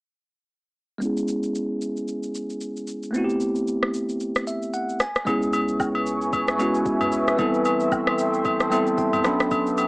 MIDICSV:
0, 0, Header, 1, 5, 480
1, 0, Start_track
1, 0, Tempo, 530973
1, 920, Time_signature, 4, 2, 24, 8
1, 8929, End_track
2, 0, Start_track
2, 0, Title_t, "Ambient pad"
2, 0, Program_c, 0, 92
2, 4761, Note_on_c, 0, 80, 75
2, 4762, Note_on_c, 0, 71, 80
2, 4762, Note_on_c, 0, 76, 78
2, 4762, Note_on_c, 0, 85, 91
2, 6661, Note_off_c, 0, 80, 0
2, 6662, Note_off_c, 0, 71, 0
2, 6662, Note_off_c, 0, 85, 0
2, 6680, Note_on_c, 0, 69, 82
2, 6680, Note_on_c, 0, 79, 75
2, 6681, Note_on_c, 0, 84, 90
2, 8325, Note_off_c, 0, 76, 0
2, 8343, Note_off_c, 0, 69, 0
2, 8343, Note_off_c, 0, 79, 0
2, 8344, Note_off_c, 0, 84, 0
2, 8358, Note_on_c, 0, 71, 83
2, 8359, Note_on_c, 0, 78, 71
2, 8359, Note_on_c, 0, 81, 75
2, 8359, Note_on_c, 0, 86, 88
2, 8929, Note_off_c, 0, 71, 0
2, 8929, Note_off_c, 0, 78, 0
2, 8929, Note_off_c, 0, 81, 0
2, 8929, Note_off_c, 0, 86, 0
2, 8929, End_track
3, 0, Start_track
3, 0, Title_t, "Tine electric piano"
3, 0, Program_c, 1, 4
3, 889, Note_on_c, 1, 56, 72
3, 905, Note_on_c, 1, 59, 69
3, 922, Note_on_c, 1, 61, 66
3, 938, Note_on_c, 1, 64, 63
3, 954, Note_on_c, 1, 68, 77
3, 1104, Control_c, 1, 64, 127
3, 2789, Note_off_c, 1, 56, 0
3, 2797, Note_off_c, 1, 59, 0
3, 2805, Note_off_c, 1, 61, 0
3, 2810, Note_on_c, 1, 57, 73
3, 2813, Note_off_c, 1, 64, 0
3, 2821, Note_off_c, 1, 68, 0
3, 2826, Note_on_c, 1, 59, 72
3, 2842, Note_on_c, 1, 60, 71
3, 2853, Control_c, 1, 64, 0
3, 2859, Note_on_c, 1, 64, 66
3, 2874, Note_on_c, 1, 66, 68
3, 2924, Note_off_c, 1, 66, 0
3, 2932, Note_on_c, 1, 67, 83
3, 2995, Control_c, 1, 64, 127
3, 4042, Note_on_c, 1, 76, 72
3, 4265, Note_off_c, 1, 76, 0
3, 4281, Note_on_c, 1, 78, 76
3, 4471, Note_off_c, 1, 57, 0
3, 4479, Note_off_c, 1, 59, 0
3, 4487, Note_off_c, 1, 60, 0
3, 4496, Note_off_c, 1, 64, 0
3, 4504, Note_off_c, 1, 78, 0
3, 4522, Note_on_c, 1, 80, 68
3, 4533, Note_off_c, 1, 67, 0
3, 4533, Control_c, 1, 64, 0
3, 4627, Control_c, 1, 64, 127
3, 4744, Note_off_c, 1, 80, 0
3, 4746, Note_on_c, 1, 56, 85
3, 4754, Note_on_c, 1, 59, 78
3, 4762, Note_on_c, 1, 61, 79
3, 4771, Note_on_c, 1, 64, 78
3, 4772, Control_c, 1, 64, 0
3, 4778, Note_on_c, 1, 68, 94
3, 4904, Control_c, 1, 64, 127
3, 5529, Note_off_c, 1, 56, 0
3, 5533, Note_off_c, 1, 59, 0
3, 5537, Note_off_c, 1, 61, 0
3, 5541, Note_off_c, 1, 64, 0
3, 5545, Note_off_c, 1, 68, 0
3, 5947, Note_on_c, 1, 56, 85
3, 5955, Note_on_c, 1, 59, 80
3, 5963, Note_on_c, 1, 61, 81
3, 5971, Note_on_c, 1, 64, 81
3, 5979, Note_on_c, 1, 66, 96
3, 6545, Note_off_c, 1, 56, 0
3, 6549, Note_off_c, 1, 59, 0
3, 6553, Note_off_c, 1, 61, 0
3, 6557, Note_off_c, 1, 64, 0
3, 6561, Note_off_c, 1, 66, 0
3, 6665, Note_on_c, 1, 55, 83
3, 6673, Note_on_c, 1, 59, 81
3, 6681, Note_on_c, 1, 60, 79
3, 6690, Note_on_c, 1, 64, 81
3, 6691, Control_c, 1, 64, 0
3, 6697, Note_on_c, 1, 69, 93
3, 6829, Control_c, 1, 64, 127
3, 7448, Note_off_c, 1, 55, 0
3, 7452, Note_off_c, 1, 59, 0
3, 7456, Note_off_c, 1, 60, 0
3, 7461, Note_off_c, 1, 64, 0
3, 7464, Note_off_c, 1, 69, 0
3, 7865, Note_on_c, 1, 55, 84
3, 7873, Note_on_c, 1, 59, 81
3, 7882, Note_on_c, 1, 60, 79
3, 7882, Note_on_c, 1, 76, 76
3, 7890, Note_on_c, 1, 64, 82
3, 7898, Note_on_c, 1, 69, 99
3, 8104, Note_off_c, 1, 76, 0
3, 8121, Note_on_c, 1, 79, 78
3, 8342, Note_off_c, 1, 59, 0
3, 8344, Note_off_c, 1, 79, 0
3, 8345, Note_on_c, 1, 54, 88
3, 8353, Note_off_c, 1, 55, 0
3, 8353, Note_on_c, 1, 59, 78
3, 8361, Note_off_c, 1, 60, 0
3, 8361, Note_on_c, 1, 61, 81
3, 8361, Note_on_c, 1, 83, 74
3, 8365, Note_off_c, 1, 64, 0
3, 8366, Note_off_c, 1, 69, 0
3, 8370, Control_c, 1, 64, 0
3, 8370, Note_on_c, 1, 62, 83
3, 8377, Note_on_c, 1, 69, 97
3, 8538, Control_c, 1, 64, 127
3, 8584, Note_off_c, 1, 83, 0
3, 8929, Note_off_c, 1, 54, 0
3, 8929, Note_off_c, 1, 59, 0
3, 8929, Note_off_c, 1, 61, 0
3, 8929, Note_off_c, 1, 62, 0
3, 8929, Note_off_c, 1, 69, 0
3, 8929, End_track
4, 0, Start_track
4, 0, Title_t, "Analog synth bass"
4, 0, Program_c, 2, 38
4, 4762, Note_on_c, 2, 37, 84
4, 6645, Note_off_c, 2, 37, 0
4, 6680, Note_on_c, 2, 33, 84
4, 8326, Note_off_c, 2, 33, 0
4, 8360, Note_on_c, 2, 35, 82
4, 8929, Note_off_c, 2, 35, 0
4, 8929, End_track
5, 0, Start_track
5, 0, Title_t, "Drums"
5, 919, Note_on_c, 9, 82, 65
5, 1009, Note_off_c, 9, 82, 0
5, 1058, Note_on_c, 9, 82, 49
5, 1149, Note_off_c, 9, 82, 0
5, 1157, Note_on_c, 9, 82, 89
5, 1247, Note_off_c, 9, 82, 0
5, 1294, Note_on_c, 9, 82, 50
5, 1384, Note_off_c, 9, 82, 0
5, 1402, Note_on_c, 9, 82, 80
5, 1493, Note_off_c, 9, 82, 0
5, 1641, Note_on_c, 9, 82, 95
5, 1731, Note_off_c, 9, 82, 0
5, 1778, Note_on_c, 9, 82, 44
5, 1868, Note_off_c, 9, 82, 0
5, 1879, Note_on_c, 9, 82, 67
5, 1969, Note_off_c, 9, 82, 0
5, 2015, Note_on_c, 9, 82, 55
5, 2106, Note_off_c, 9, 82, 0
5, 2123, Note_on_c, 9, 82, 90
5, 2213, Note_off_c, 9, 82, 0
5, 2258, Note_on_c, 9, 82, 52
5, 2348, Note_off_c, 9, 82, 0
5, 2357, Note_on_c, 9, 82, 67
5, 2448, Note_off_c, 9, 82, 0
5, 2500, Note_on_c, 9, 82, 52
5, 2590, Note_off_c, 9, 82, 0
5, 2598, Note_on_c, 9, 82, 90
5, 2688, Note_off_c, 9, 82, 0
5, 2738, Note_on_c, 9, 82, 48
5, 2828, Note_off_c, 9, 82, 0
5, 2840, Note_on_c, 9, 82, 67
5, 2930, Note_off_c, 9, 82, 0
5, 2979, Note_on_c, 9, 82, 50
5, 3069, Note_off_c, 9, 82, 0
5, 3077, Note_on_c, 9, 82, 86
5, 3168, Note_off_c, 9, 82, 0
5, 3213, Note_on_c, 9, 82, 51
5, 3304, Note_off_c, 9, 82, 0
5, 3322, Note_on_c, 9, 82, 81
5, 3412, Note_off_c, 9, 82, 0
5, 3459, Note_on_c, 9, 37, 79
5, 3549, Note_off_c, 9, 37, 0
5, 3561, Note_on_c, 9, 82, 95
5, 3651, Note_off_c, 9, 82, 0
5, 3697, Note_on_c, 9, 82, 46
5, 3788, Note_off_c, 9, 82, 0
5, 3799, Note_on_c, 9, 82, 71
5, 3889, Note_off_c, 9, 82, 0
5, 3936, Note_on_c, 9, 82, 54
5, 3940, Note_on_c, 9, 37, 86
5, 4026, Note_off_c, 9, 82, 0
5, 4031, Note_off_c, 9, 37, 0
5, 4043, Note_on_c, 9, 82, 90
5, 4133, Note_off_c, 9, 82, 0
5, 4179, Note_on_c, 9, 82, 54
5, 4270, Note_off_c, 9, 82, 0
5, 4280, Note_on_c, 9, 82, 71
5, 4370, Note_off_c, 9, 82, 0
5, 4422, Note_on_c, 9, 82, 55
5, 4513, Note_off_c, 9, 82, 0
5, 4519, Note_on_c, 9, 82, 91
5, 4520, Note_on_c, 9, 37, 99
5, 4609, Note_off_c, 9, 82, 0
5, 4611, Note_off_c, 9, 37, 0
5, 4660, Note_on_c, 9, 82, 48
5, 4664, Note_on_c, 9, 37, 92
5, 4751, Note_off_c, 9, 82, 0
5, 4754, Note_off_c, 9, 37, 0
5, 4762, Note_on_c, 9, 36, 110
5, 4762, Note_on_c, 9, 82, 72
5, 4763, Note_on_c, 9, 67, 69
5, 4852, Note_off_c, 9, 36, 0
5, 4852, Note_off_c, 9, 82, 0
5, 4854, Note_off_c, 9, 67, 0
5, 4901, Note_on_c, 9, 82, 49
5, 4992, Note_off_c, 9, 82, 0
5, 5000, Note_on_c, 9, 82, 90
5, 5002, Note_on_c, 9, 67, 78
5, 5090, Note_off_c, 9, 82, 0
5, 5092, Note_off_c, 9, 67, 0
5, 5136, Note_on_c, 9, 82, 53
5, 5227, Note_off_c, 9, 82, 0
5, 5240, Note_on_c, 9, 36, 98
5, 5242, Note_on_c, 9, 77, 72
5, 5244, Note_on_c, 9, 82, 85
5, 5331, Note_off_c, 9, 36, 0
5, 5332, Note_off_c, 9, 77, 0
5, 5335, Note_off_c, 9, 82, 0
5, 5378, Note_on_c, 9, 67, 73
5, 5468, Note_off_c, 9, 67, 0
5, 5482, Note_on_c, 9, 82, 100
5, 5573, Note_off_c, 9, 82, 0
5, 5618, Note_on_c, 9, 82, 45
5, 5708, Note_off_c, 9, 82, 0
5, 5720, Note_on_c, 9, 36, 105
5, 5720, Note_on_c, 9, 82, 70
5, 5722, Note_on_c, 9, 67, 71
5, 5810, Note_off_c, 9, 82, 0
5, 5811, Note_off_c, 9, 36, 0
5, 5813, Note_off_c, 9, 67, 0
5, 5856, Note_on_c, 9, 82, 54
5, 5860, Note_on_c, 9, 37, 88
5, 5946, Note_off_c, 9, 82, 0
5, 5950, Note_off_c, 9, 37, 0
5, 5961, Note_on_c, 9, 67, 64
5, 5962, Note_on_c, 9, 82, 89
5, 6051, Note_off_c, 9, 67, 0
5, 6053, Note_off_c, 9, 82, 0
5, 6098, Note_on_c, 9, 82, 55
5, 6189, Note_off_c, 9, 82, 0
5, 6198, Note_on_c, 9, 82, 75
5, 6199, Note_on_c, 9, 36, 96
5, 6288, Note_off_c, 9, 82, 0
5, 6289, Note_off_c, 9, 36, 0
5, 6335, Note_on_c, 9, 67, 72
5, 6338, Note_on_c, 9, 45, 97
5, 6341, Note_on_c, 9, 82, 53
5, 6426, Note_off_c, 9, 67, 0
5, 6429, Note_off_c, 9, 45, 0
5, 6431, Note_off_c, 9, 82, 0
5, 6437, Note_on_c, 9, 82, 88
5, 6528, Note_off_c, 9, 82, 0
5, 6578, Note_on_c, 9, 82, 49
5, 6582, Note_on_c, 9, 37, 87
5, 6668, Note_off_c, 9, 82, 0
5, 6672, Note_off_c, 9, 37, 0
5, 6679, Note_on_c, 9, 82, 68
5, 6680, Note_on_c, 9, 36, 116
5, 6682, Note_on_c, 9, 67, 70
5, 6769, Note_off_c, 9, 82, 0
5, 6770, Note_off_c, 9, 36, 0
5, 6772, Note_off_c, 9, 67, 0
5, 6818, Note_on_c, 9, 82, 52
5, 6909, Note_off_c, 9, 82, 0
5, 6917, Note_on_c, 9, 82, 88
5, 6921, Note_on_c, 9, 67, 78
5, 7008, Note_off_c, 9, 82, 0
5, 7011, Note_off_c, 9, 67, 0
5, 7053, Note_on_c, 9, 82, 54
5, 7143, Note_off_c, 9, 82, 0
5, 7159, Note_on_c, 9, 36, 94
5, 7161, Note_on_c, 9, 77, 74
5, 7161, Note_on_c, 9, 82, 86
5, 7249, Note_off_c, 9, 36, 0
5, 7252, Note_off_c, 9, 77, 0
5, 7252, Note_off_c, 9, 82, 0
5, 7298, Note_on_c, 9, 37, 82
5, 7298, Note_on_c, 9, 67, 70
5, 7388, Note_off_c, 9, 37, 0
5, 7388, Note_off_c, 9, 67, 0
5, 7400, Note_on_c, 9, 82, 102
5, 7491, Note_off_c, 9, 82, 0
5, 7537, Note_on_c, 9, 82, 45
5, 7627, Note_off_c, 9, 82, 0
5, 7638, Note_on_c, 9, 82, 67
5, 7639, Note_on_c, 9, 36, 105
5, 7643, Note_on_c, 9, 67, 71
5, 7728, Note_off_c, 9, 82, 0
5, 7729, Note_off_c, 9, 36, 0
5, 7734, Note_off_c, 9, 67, 0
5, 7774, Note_on_c, 9, 82, 54
5, 7779, Note_on_c, 9, 37, 87
5, 7865, Note_off_c, 9, 82, 0
5, 7869, Note_off_c, 9, 37, 0
5, 7881, Note_on_c, 9, 67, 64
5, 7882, Note_on_c, 9, 82, 92
5, 7971, Note_off_c, 9, 67, 0
5, 7972, Note_off_c, 9, 82, 0
5, 8017, Note_on_c, 9, 82, 57
5, 8108, Note_off_c, 9, 82, 0
5, 8118, Note_on_c, 9, 36, 97
5, 8118, Note_on_c, 9, 82, 72
5, 8208, Note_off_c, 9, 82, 0
5, 8209, Note_off_c, 9, 36, 0
5, 8256, Note_on_c, 9, 67, 76
5, 8258, Note_on_c, 9, 45, 92
5, 8260, Note_on_c, 9, 82, 53
5, 8346, Note_off_c, 9, 67, 0
5, 8348, Note_off_c, 9, 45, 0
5, 8350, Note_off_c, 9, 82, 0
5, 8356, Note_on_c, 9, 82, 95
5, 8358, Note_on_c, 9, 37, 101
5, 8447, Note_off_c, 9, 82, 0
5, 8448, Note_off_c, 9, 37, 0
5, 8497, Note_on_c, 9, 82, 51
5, 8501, Note_on_c, 9, 37, 90
5, 8587, Note_off_c, 9, 82, 0
5, 8591, Note_off_c, 9, 37, 0
5, 8599, Note_on_c, 9, 82, 66
5, 8600, Note_on_c, 9, 36, 114
5, 8602, Note_on_c, 9, 67, 68
5, 8689, Note_off_c, 9, 82, 0
5, 8690, Note_off_c, 9, 36, 0
5, 8692, Note_off_c, 9, 67, 0
5, 8738, Note_on_c, 9, 82, 53
5, 8829, Note_off_c, 9, 82, 0
5, 8837, Note_on_c, 9, 82, 93
5, 8841, Note_on_c, 9, 67, 76
5, 8928, Note_off_c, 9, 82, 0
5, 8929, Note_off_c, 9, 67, 0
5, 8929, End_track
0, 0, End_of_file